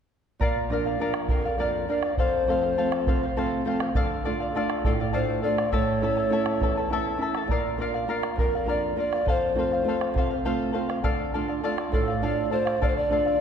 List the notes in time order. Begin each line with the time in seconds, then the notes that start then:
0.40 A#2 A#4 D5 F5, bombo low
0.70 F3 A#3 D4 A#4 D5 F5, bombo rim
0.84 D5 F5, bombo rim
0.99 F3 A#3 D4 A#4 D5 F5
1.14 bombo rim
1.29 F2 A#4 D5 F5, bombo low
1.45 D5 F5
1.58 F3 A#3 D4 A#4 D5 F5, bombo rim
1.88 F3 A#3 D4 A#4 D5 F5
2.03 D5 F5, bombo rim
2.17 F2 A4 C5 F5, bombo low
2.47 F3 A3 C4 A4 C5 F5, bombo rim
2.62 C5 F5, bombo rim
2.77 F3 A3 C4 A4 C5 F5
2.92 bombo rim
3.07 C3 A4 C5 F5, bombo low
3.23 C5 F5
3.36 F3 A3 C4 A4 C5 F5
3.65 F3 A3 C4 A4 C5 F5
3.80 C5 F5, bombo rim
3.95 D3 A4 D5 F5, bombo low
4.25 A3 D4 F4 A4 D5 F5, bombo rim
4.40 D5 F5, bombo rim
4.54 A3 D4 F4 A4 D5 F5
4.70 bombo rim
4.84 A2 A4 D5 F5, bombo low
5.00 D5 F5
5.13 A3 D4 F4 A4 C5 D5 F5, bombo rim
5.42 A3 D4 F4 A4 D5 F5
5.57 D5 F5, bombo rim
5.72 A2 E4 A4 C#5 E5 A5, bombo low
6.02 A3 C#4 E4 A4 E5 A5
6.17 E4 A4 A5, bombo rim
6.30 A3 C#4 E4 A4 C#5 E5 A5
6.46 bombo rim
6.60 E2 E4 A4 E5 A5, bombo low
6.77 E4 A4 A5
6.89 A3 C#4 E4 A4 C#5 E5 A5, bombo rim
7.17 A3 C#4 E4
7.21 E4 A4 E5 A5
7.35 E4 A4 A5, bombo rim
7.48 A#2 A#4 D5, bombo low
7.52 F5
7.78 A#3 D4 F4 A#4 D5 F5, bombo rim
7.94 D5 F5, bombo rim
8.08 A#3 D4 F4 A#4 D5 F5
8.23 bombo rim
8.36 F2 A#4, bombo low
8.40 D5 F5
8.55 D5 F5
8.65 A#3 D4 F4 A#4 D5 F5, bombo rim
8.70 D5
8.96 A#3 D4 F4 A#4 D5
9.00 F5
9.13 D5 F5, bombo rim
9.25 F2 A4 C5, bombo low
9.29 C5 F5
9.55 A3 C4 F4 A4, bombo rim
9.59 C5 F5
9.72 C5 F5, bombo rim
9.84 A3 C4 F4
9.88 A4 C5 F5
10.01 bombo rim
10.14 C3 A4 C5, bombo low
10.19 F5
10.31 C5 F5
10.45 A3 C4 F4 A4 C5 F5, bombo rim
10.73 A3 C4 F4 A4 C5 F5
10.89 C5 F5, bombo rim
11.04 D3 A4 D5 F5, bombo low
11.34 A3 D4 F4 A4 D5 F5, bombo rim
11.48 D5 F5, bombo rim
11.63 A3 D4 F4 A4 D5 F5
11.78 bombo rim
11.92 A2 A4 D5 F5, bombo low
12.08 D5 F5
12.22 A3 D4 F4 A4 D5 F5, bombo rim
12.51 A3 D4 F4 A4 C5 D5 F5
12.65 D5 F5, bombo rim
12.81 D3 A4 D5 F5, bombo low
12.88 C5
12.96 D5, bombo rim
13.09 A3 D4 F4 A4 D5 F5
13.26 D5 F5, bombo rim